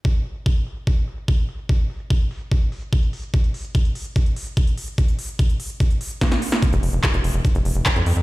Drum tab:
HH |-xoxxxox-xoxxxox|xxoxxxoxxxoxxxox|xxoxxxoxxxoxxxox|xxoxxxoxxxoxxxox|
CP |----------------|----------------|----------------|----------------|
SD |----------------|----------------|----------------|------------oo-o|
BD |o---o---o---o---|o---o---o---o---|o---o---o---o---|o---o---o---o---|

HH |xxoxxxoxxxoxxxox|
CP |----x-------x---|
SD |----------------|
BD |o---o---o---o---|